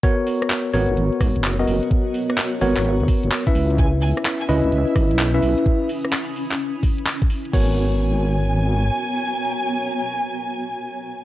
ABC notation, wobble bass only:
X:1
M:4/4
L:1/16
Q:"Swing 16ths" 1/4=128
K:G#m
V:1 name="Wobble bass" clef=bass
z6 G,,, G,,, G,,, z G,, F,,,3 F,,, z | z6 G,,, G,,,2 D,, z F,,, z2 C,,2- | C,,3 z3 C,, C,, C,, z G,,, B,,,3 B,,, z | z16 |
G,,,12 z4 | z16 |]